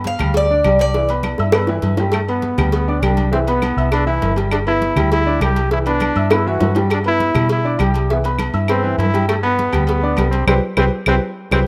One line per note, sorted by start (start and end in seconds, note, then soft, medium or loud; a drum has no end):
0.00 0.14 G2 medium
0.00 0.15 B3 medium
0.00 0.15 B4 medium
0.00 0.15 B5 medium
0.04 0.34 F5 medium
0.04 cowbell medium
0.04 high conga medium
0.19 0.61 D2 medium
0.19 0.45 G3 medium
0.19 0.45 G4 medium
0.19 0.45 G5 medium
0.19 cowbell medium
0.19 high conga soft
0.19 low conga medium
0.19 low agogo loud
0.19 claves medium
0.34 0.78 D5 medium
0.34 cowbell loud
0.34 high conga soft
0.34 low agogo medium
0.50 0.62 D4 medium
0.50 0.63 D5 medium
0.50 0.63 D6 medium
0.50 high conga soft
0.64 1.34 C2 medium
0.64 0.90 G3 medium
0.64 0.90 G4 medium
0.64 0.90 G5 medium
0.64 cowbell medium
0.64 high conga medium
0.64 low agogo loud
0.64 claves medium
0.79 1.08 D5 medium
0.79 cowbell medium
0.79 low agogo medium
0.94 1.07 E3 medium
0.94 1.07 E4 medium
0.94 1.07 E5 medium
0.94 cowbell loud
1.09 1.34 B3 medium
1.09 1.34 B4 medium
1.09 1.34 B5 medium
1.09 cowbell medium
1.09 high conga soft
1.09 low agogo medium
1.23 cowbell medium
1.23 high conga medium
1.23 low agogo loud
1.23 claves medium
1.38 1.81 G2 medium
1.38 1.51 E4 medium
1.38 1.52 E5 medium
1.38 1.52 E6 medium
1.38 high bongo medium
1.38 low agogo medium
1.52 1.66 B3 medium
1.52 1.66 B4 medium
1.52 1.66 B5 medium
1.52 cowbell loud
1.52 high bongo loud
1.52 high conga soft
1.52 low agogo loud
1.52 claves medium
1.67 1.93 E3 medium
1.67 1.93 E4 medium
1.67 1.94 E5 medium
1.67 low bongo medium
1.67 high conga soft
1.67 high timbale medium
1.82 2.52 G2 medium
1.82 cowbell medium
1.82 high conga medium
1.82 low agogo medium
1.97 2.11 G3 medium
1.97 2.12 G4 medium
1.97 2.12 G5 medium
1.97 cowbell medium
1.97 low bongo medium
1.97 low timbale medium
1.97 low agogo medium
2.12 2.21 A3 medium
2.12 cowbell loud
2.12 high conga soft
2.12 low agogo loud
2.12 claves medium
2.28 2.53 B3 medium
2.28 2.71 B3 medium
2.28 2.53 B4 medium
2.28 2.53 B5 medium
2.28 high conga soft
2.28 low agogo medium
2.42 cowbell medium
2.42 high conga medium
2.58 3.00 D2 loud
2.58 2.83 G3 medium
2.58 2.82 G4 medium
2.58 2.83 G5 medium
2.58 cowbell medium
2.58 high conga soft
2.58 low conga medium
2.58 low agogo loud
2.58 claves medium
2.72 3.04 B3 medium
2.72 cowbell loud
2.72 high conga soft
2.72 low agogo medium
2.88 3.00 D4 medium
2.88 3.01 D5 medium
2.88 3.00 D6 medium
2.88 high conga soft
3.02 3.71 C2 medium
3.02 3.27 G3 medium
3.02 3.32 D4 loud
3.02 3.28 G4 medium
3.02 3.28 G5 medium
3.02 cowbell medium
3.02 high conga medium
3.02 low timbale medium
3.02 low agogo loud
3.02 claves medium
3.17 cowbell medium
3.17 high conga medium
3.17 low agogo medium
3.32 3.44 E3 medium
3.32 3.40 C4 loud
3.32 3.45 E4 medium
3.32 3.45 E5 medium
3.32 cowbell loud
3.47 3.72 B3 medium
3.47 3.89 B3 loud
3.47 3.72 B4 medium
3.47 3.72 B5 medium
3.47 cowbell medium
3.47 high conga soft
3.47 low agogo medium
3.62 cowbell medium
3.62 high conga medium
3.62 low agogo loud
3.62 claves medium
3.77 4.19 C2 medium
3.77 3.90 E4 medium
3.77 3.90 E5 medium
3.77 3.90 E6 medium
3.77 low agogo medium
3.91 4.04 B3 medium
3.91 4.06 D4 loud
3.91 4.04 B4 medium
3.91 4.05 B5 medium
3.91 cowbell loud
3.91 high conga soft
3.91 low agogo loud
3.91 claves medium
4.06 4.31 E3 medium
4.06 4.32 E4 loud
4.06 4.35 E4 loud
4.06 4.32 E5 loud
4.06 high conga soft
4.22 4.91 G1 loud
4.22 cowbell medium
4.22 high conga medium
4.22 low timbale medium
4.22 low agogo medium
4.36 4.61 G3 medium
4.36 4.61 G4 medium
4.36 4.62 G5 medium
4.36 cowbell medium
4.36 low agogo medium
4.51 4.59 D4 medium
4.51 cowbell loud
4.51 high conga soft
4.51 low agogo loud
4.51 claves medium
4.67 4.91 B3 medium
4.67 5.09 E4 loud
4.67 4.91 B4 medium
4.67 4.92 B5 medium
4.67 high conga soft
4.67 low agogo medium
4.82 cowbell medium
4.82 high conga medium
4.96 5.38 D2 loud
4.96 5.21 G3 medium
4.96 5.21 G4 medium
4.96 5.21 G5 medium
4.96 cowbell medium
4.96 high conga soft
4.96 low conga medium
4.96 low agogo loud
4.96 claves medium
5.12 5.40 E4 loud
5.12 cowbell loud
5.12 high conga soft
5.12 low agogo medium
5.26 5.39 D4 medium
5.26 5.39 D5 medium
5.26 5.39 D6 medium
5.26 high conga soft
5.40 6.10 C2 medium
5.40 5.66 G3 medium
5.40 5.66 G4 medium
5.40 5.70 G4 loud
5.40 5.66 G5 medium
5.40 cowbell medium
5.40 high conga medium
5.40 low timbale medium
5.40 low agogo loud
5.40 claves medium
5.56 cowbell medium
5.56 low agogo medium
5.71 5.83 E3 medium
5.71 5.84 E4 medium
5.71 5.79 E4 loud
5.71 5.84 E5 medium
5.71 cowbell loud
5.71 high conga soft
5.86 6.11 B3 medium
5.86 6.34 D4 loud
5.86 6.11 B4 medium
5.86 6.11 B5 medium
5.86 cowbell medium
5.86 high conga soft
5.86 low agogo medium
6.00 cowbell medium
6.00 high conga loud
6.00 low agogo loud
6.00 claves medium
6.16 6.57 G2 loud
6.16 6.28 E4 medium
6.16 6.29 E5 medium
6.16 6.28 E6 medium
6.16 low agogo medium
6.30 6.43 B3 medium
6.30 6.49 E4 loud
6.30 6.44 B4 medium
6.30 6.44 B5 medium
6.30 cowbell loud
6.30 high bongo loud
6.30 high conga soft
6.30 low agogo loud
6.30 claves medium
6.47 6.71 E3 medium
6.47 6.71 E4 medium
6.47 6.77 F#4 loud
6.47 6.71 E5 loud
6.47 high conga soft
6.60 7.30 G2 medium
6.60 cowbell medium
6.60 low bongo loud
6.60 high conga medium
6.60 low timbale medium
6.60 low agogo medium
6.75 7.00 G3 medium
6.75 7.00 G4 medium
6.75 7.01 G5 medium
6.75 cowbell medium
6.75 low bongo loud
6.75 low agogo medium
6.90 6.99 D4 loud
6.90 cowbell loud
6.90 high conga soft
6.90 low agogo loud
6.90 claves medium
7.04 7.30 B3 medium
7.04 7.48 E4 loud
7.04 7.30 B4 medium
7.04 7.30 B5 medium
7.04 high conga soft
7.04 low agogo medium
7.20 cowbell medium
7.20 high conga medium
7.34 7.77 B2 loud
7.34 7.59 G3 medium
7.34 7.59 G4 medium
7.34 7.60 G5 medium
7.34 cowbell medium
7.34 high conga soft
7.34 low conga medium
7.34 low agogo loud
7.34 claves medium
7.49 7.83 E4 loud
7.49 cowbell loud
7.49 high conga soft
7.49 low agogo medium
7.65 7.77 D4 medium
7.65 7.77 D5 medium
7.65 7.78 D6 medium
7.65 high conga soft
7.79 8.49 C2 loud
7.79 8.04 G3 medium
7.79 8.04 G4 medium
7.79 8.11 G4 medium
7.79 8.04 G5 medium
7.79 cowbell medium
7.79 high conga loud
7.79 low agogo loud
7.79 claves medium
7.94 cowbell medium
7.94 low agogo medium
8.10 8.22 E3 medium
8.10 8.19 B3 medium
8.10 8.22 E4 medium
8.10 8.23 E5 medium
8.10 cowbell loud
8.24 8.49 B3 medium
8.24 8.49 B4 medium
8.24 8.49 B5 medium
8.24 cowbell medium
8.24 high conga soft
8.24 low agogo medium
8.39 cowbell medium
8.39 high conga loud
8.39 low agogo loud
8.39 claves medium
8.54 8.96 G2 medium
8.54 8.66 E4 medium
8.54 8.66 E5 medium
8.54 8.66 E6 medium
8.54 low agogo medium
8.68 8.81 B3 medium
8.68 8.97 C4 loud
8.68 8.81 B4 medium
8.68 8.81 B5 medium
8.68 cowbell loud
8.68 high conga soft
8.68 low agogo loud
8.68 claves medium
8.83 9.08 E3 medium
8.83 9.08 E4 medium
8.83 9.08 E5 medium
8.83 high conga soft
8.98 9.68 G2 medium
8.98 9.27 E4 loud
8.98 cowbell medium
8.98 high conga medium
8.98 low timbale medium
8.98 low agogo medium
9.14 9.38 G3 medium
9.14 9.38 G4 medium
9.14 9.39 G5 medium
9.14 cowbell medium
9.14 low agogo medium
9.29 9.35 A3 loud
9.29 cowbell loud
9.29 high conga soft
9.29 low agogo loud
9.29 claves medium
9.43 9.85 B3 loud
9.43 9.68 B3 medium
9.43 9.68 B4 medium
9.43 9.68 B5 medium
9.43 high conga soft
9.43 low agogo medium
9.59 cowbell medium
9.59 high conga medium
9.72 10.15 D2 medium
9.72 9.97 G3 medium
9.72 9.98 G4 medium
9.72 9.98 G5 medium
9.72 cowbell medium
9.72 high conga soft
9.72 low conga medium
9.72 low agogo loud
9.72 claves medium
9.87 10.29 B3 loud
9.87 cowbell loud
9.87 high conga soft
9.87 low agogo medium
10.03 10.15 D4 medium
10.03 10.16 D5 medium
10.03 10.16 D6 medium
10.03 high conga soft
10.17 10.46 C2 medium
10.17 10.43 G3 medium
10.17 10.43 G4 medium
10.17 10.43 G5 medium
10.17 cowbell medium
10.17 high conga medium
10.17 low timbale medium
10.17 low agogo loud
10.17 claves medium
10.31 10.46 C4 medium
10.31 cowbell medium
10.31 low agogo medium
10.47 10.59 C2 loud
10.47 10.55 C4 medium
10.47 10.57 G4 loud
10.47 10.57 B4 loud
10.47 10.57 C5 loud
10.47 cowbell loud
10.47 high conga loud
10.47 high timbale loud
10.47 claves loud
10.77 10.88 C2 loud
10.77 10.86 C4 loud
10.77 10.87 G4 loud
10.77 10.87 B4 loud
10.77 10.87 C5 loud
10.77 cowbell loud
10.77 high conga loud
10.77 high timbale loud
10.77 claves loud
11.06 11.18 C2 loud
11.06 11.15 C4 loud
11.06 11.18 G4 loud
11.06 11.17 B4 loud
11.06 11.17 C5 medium
11.06 cowbell loud
11.06 high conga medium
11.06 high timbale loud
11.06 claves loud
11.51 11.63 C2 loud
11.51 11.60 C4 medium
11.51 11.62 G4 loud
11.51 11.62 B4 medium
11.51 11.62 C5 loud
11.51 cowbell loud
11.51 high conga loud
11.51 high timbale loud
11.51 claves loud